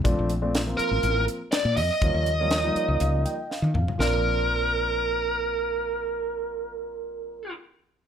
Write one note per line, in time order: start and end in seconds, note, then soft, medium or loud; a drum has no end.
0.04 0.17 A#1 medium
0.04 0.30 F3 medium
0.04 0.31 A3 medium
0.04 0.31 C4 medium
0.04 0.31 D4 medium
0.04 kick medium
0.04 closed hi-hat medium
0.19 0.75 A#1 medium
0.29 closed hi-hat medium
0.42 0.59 F3 medium
0.42 0.59 A3 medium
0.42 0.59 C4 medium
0.42 0.59 D4 medium
0.55 snare medium
0.55 closed hi-hat medium
0.66 1.36 F3 medium
0.66 1.36 A#3 medium
0.66 1.36 C4 medium
0.66 1.36 F4 medium
0.77 1.24 A#4 loud
0.77 muted fretless electric bass stroke soft
0.77 closed hi-hat medium
0.91 1.02 A1 medium
1.03 1.26 A1 medium
1.03 closed hi-hat medium
1.28 closed hi-hat soft
1.52 1.76 D5 medium
1.52 snare loud
1.52 closed hi-hat medium
1.65 1.78 A#2 medium
1.76 1.89 F2 medium
1.76 3.71 D#5 medium
1.76 open hi-hat medium
2.01 2.14 D#2 medium
2.01 2.28 F3 medium
2.01 2.28 G3 medium
2.01 2.28 A#3 medium
2.01 2.28 C#4 medium
2.01 kick loud
2.01 closed hi-hat medium
2.14 2.72 D#2 medium
2.26 closed hi-hat soft
2.40 2.57 F3 medium
2.40 2.57 G3 medium
2.40 2.57 A#3 medium
2.40 2.57 C#4 medium
2.51 snare loud
2.51 closed hi-hat medium
2.64 3.34 F3 medium
2.64 3.34 G3 medium
2.64 3.34 A#3 medium
2.64 3.34 D#4 medium
2.74 2.98 C#5 medium
2.74 muted fretless electric bass stroke soft
2.74 closed hi-hat soft
2.88 3.00 C#2 medium
3.00 3.24 C#2 medium
3.00 3.24 F5 medium
3.00 closed hi-hat medium
3.25 3.49 G5 medium
3.25 closed hi-hat medium
3.50 3.73 F5 medium
3.50 snare soft
3.62 3.76 D#3 medium
3.62 high tom soft
3.74 3.87 F2 medium
3.74 3.98 F5 medium
3.74 mid tom medium
3.88 floor tom medium
3.98 7.52 A#1 medium
3.98 7.51 F3 medium
3.98 7.52 A#3 medium
3.98 7.53 C4 medium
3.98 7.53 A#4 medium
3.98 snare medium
4.02 7.55 D4 medium